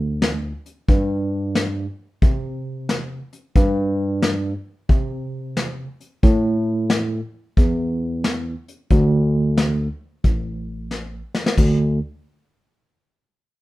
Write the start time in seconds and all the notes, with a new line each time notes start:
Already playing: D2
0.22 snare, closed hi-hat
0.66 closed hi-hat
0.89 G2, kick, closed hi-hat
1.55 snare, closed hi-hat
2.22 C3, kick, closed hi-hat
2.89 snare, closed hi-hat
3.33 closed hi-hat
3.56 G2, kick, closed hi-hat
4.22 snare, closed hi-hat
4.89 C3, kick, closed hi-hat
5.57 snare, closed hi-hat
6.00 closed hi-hat
6.23 A2, kick, closed hi-hat
6.90 snare, closed hi-hat
7.57 E2, kick, closed hi-hat
8.24 snare, closed hi-hat
8.68 closed hi-hat
8.90 D2, kick, closed hi-hat
9.57 snare, closed hi-hat
10.24 A1, kick, closed hi-hat
10.91 snare
11.35 snare
11.46 snare
11.58 D2, kick, crash